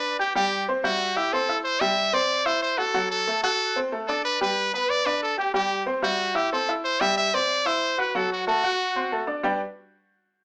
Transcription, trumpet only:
Already playing: B4
0.19 G4
0.36 G4
0.84 F#4
1.16 G4
1.33 A4
1.64 C5
1.80 E5
2.14 D5
2.46 C5
2.62 C5
2.78 A4
3.11 A4
3.43 A4
4.08 A4
4.25 B4
4.42 B4
4.74 B4
4.89 D5
5.06 B4
5.23 A4
5.39 G4
5.55 G4
6.04 F#4
6.36 G4
6.52 A4
6.84 C5
7.01 E5
7.17 E5
7.34 D5
7.66 C5
7.99 B4
8.16 A4
8.32 F#4
8.47 F#4

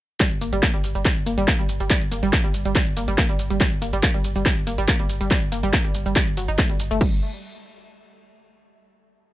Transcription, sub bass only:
0.31 G1
0.41 G1
0.53 G1
0.74 G1
0.84 G1
0.95 G1
1.16 G1
1.26 G1
1.38 G1
1.59 G1
1.69 G1
1.80 G1
2.02 G1
2.12 G1
2.23 G1
2.44 G1
2.54 G1
2.65 G1
2.87 G1
2.97 G1
3.08 G1
3.29 G1
3.39 G1
3.50 G1
3.72 G1
3.82 G1
3.93 G1
4.14 G1
4.24 G1
4.36 G1
4.57 G1
4.67 G1
4.78 G1
4.99 G1
5.09 G1
5.21 G1
5.42 G1
5.52 G1
5.63 G1
5.85 G1
5.95 G1
6.06 G1
6.27 G1
6.37 G1
6.48 G1
6.70 G1
6.80 G1
6.91 G1
7.01 G1

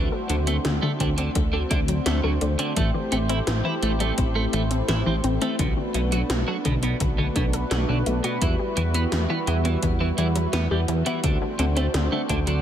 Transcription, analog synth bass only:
0.29 D2
0.65 D2
1.00 D2
1.36 D2
1.71 D2
2.06 D2
2.24 D2
2.42 D2
2.77 A1
3.12 A1
3.47 A1
3.83 A1
4.18 A1
4.53 A1
4.89 A1
5.06 A1
5.24 A1
5.59 B1
5.95 B1
6.30 B1
6.65 B1
7.01 B1
7.36 B1
7.71 B1
7.89 B1
8.06 B1
8.42 E2
8.77 E2
9.12 E2
9.47 E2
9.83 E2
10.18 E2
10.53 E2
10.71 E2
10.89 E2
11.24 D2
11.59 D2
11.94 D2
12.30 D2

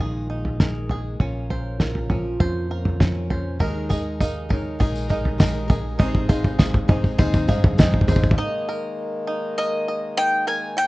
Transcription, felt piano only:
3.60 D#2 D#3 G#3 D#4 A#4 D#5
3.90 G#3 D#4 A#4 D#5
4.20 G#3 D#4 A#4 F5
4.50 G#3 D#4 A#4 C#5
4.80 G#3 D#4 A#4 D#5
5.09 G#3 D#4 A#4 D#5
5.38 G#3 D#4 A#4 D#5
5.69 G#3 D#4 A#4 D#5
5.98 G#1 C3 G#3 D#4 C5 D#5
6.28 G#3 D#4 C5 F5
6.58 G#3 D#4 C5 F5
6.89 G#3 D#4 C5 D#5
7.18 G#3 D#4 C5 D#5
7.48 G#3 D#4 C5 D#5 F5
7.78 G#3 D#4 C5 D#5 G5
8.08 G#3 D#4 C5 D#5 G#5

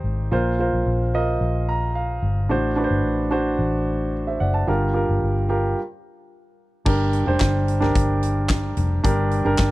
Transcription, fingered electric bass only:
0.04 G#1
0.32 A#1
0.73 A#1
0.86 A#1
1.41 A#1
2.22 G1
2.50 A1
2.91 G1
3.05 A1
3.59 A1
4.41 F#1
4.68 G1
5.09 G1
5.22 G1
6.86 G1
7.27 F1
7.41 G1
7.95 G1
8.77 F1
9.05 G1
9.45 G1
9.59 G1

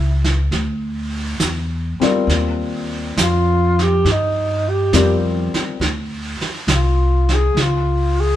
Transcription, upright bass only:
Already playing: C#2
0.51 D2
1.40 E2
2.00 muted upright bass stroke
2.27 D#2
3.17 F2
4.04 G2
4.93 F2
5.54 muted upright bass stroke
5.79 D2
6.40 muted upright bass stroke
6.67 C2
7.55 C#2

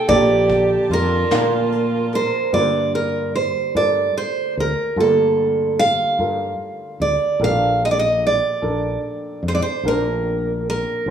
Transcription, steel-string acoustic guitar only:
0.09 D5
0.93 A#4
2.15 C5
2.54 D5
2.95 A#4
3.35 C5
3.77 D5
4.17 C5
4.60 A#4
5.00 A4
5.79 F5
7.02 D5
7.44 F5
7.85 D#5
7.91 D5
7.99 D#5
8.27 D5
9.48 C5
9.55 D5
9.62 C5
9.88 A#4
10.70 A#4

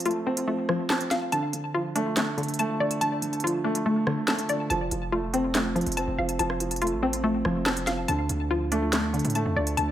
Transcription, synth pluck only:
Already playing: F3 F5 A5
0.06 F4
0.27 C4
0.48 A3
0.69 F3
0.90 A5
1.11 F5
1.32 A5
1.74 F4
1.96 D4
2.17 A3
2.38 D3
2.59 A5
2.80 D5
3.01 A5
3.44 F4
3.64 D4
3.86 A3
4.07 D3
4.28 A5
4.49 D5
4.70 A5
5.12 F4
5.34 C4
5.55 A3
5.75 F3
5.97 A5
6.18 F5
6.39 A5
6.82 F4
7.03 C4
7.24 A3
7.45 F3
7.66 A5
7.87 F5
8.08 A5
8.51 F4
8.72 D4
8.93 A3
9.14 D3
9.35 A5
9.56 D5
9.77 A5

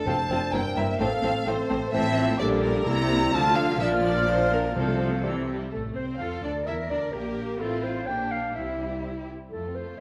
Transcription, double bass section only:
0.06 F1
0.30 F1
0.53 G1
0.76 G1
0.99 A1
1.23 A1
1.47 A1
1.69 A1
1.92 A1
2.39 A#1
2.86 C2
3.33 D2
3.79 A#1
4.76 C2
5.73 A1
5.97 C2
6.20 F2
6.44 D2
6.67 E2
6.91 D2
7.13 A#1
7.59 A1
8.07 A#1
8.54 C2
9.52 F2

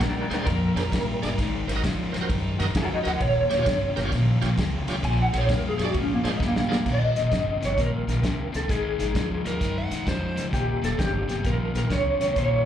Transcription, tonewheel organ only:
0.30 G#4 C5
0.38 D4 G#4 C5
0.76 D4 G#4 C5
1.22 D4 G#4 D5
1.68 A#4 C5
1.76 F#4 A#4 D#5
2.12 A#4 C5
2.21 F#4 A#4 C5
2.59 F#4 A#4 D#5
3.03 F#4 A#4 D#5
3.50 G4 C#5
3.58 F4 G4 C#5
3.96 G4 A#4
4.03 F4 G4 C#5
4.41 F4 G4 C#5
4.88 F4 G4 C#5
5.32 G#4 C5
5.41 D4 G#4 C5
5.78 G#4 C5
5.84 D4 G#4 D5
6.23 D4 G#4 C5
6.69 D4 G#4 A#4

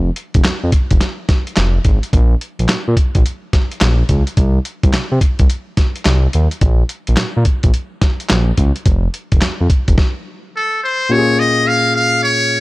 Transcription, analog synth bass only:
Already playing: F1
0.35 F1
0.45 F2
0.63 F2
0.91 F1
1.57 F1
1.85 G#1
2.13 A#1
2.59 A#1
2.69 A#2
2.88 A#2
3.16 A#1
3.81 A#1
4.09 C#2
4.37 C2
4.84 C2
4.93 C3
5.11 C3
5.40 C2
6.06 C2
6.34 D#2
6.62 A#1
7.08 A#1
7.18 A#2
7.37 A#2
7.64 A#1
8.31 A#1
8.58 C#2
8.86 F1
9.32 F1
9.43 F2
9.60 F2
9.89 F1

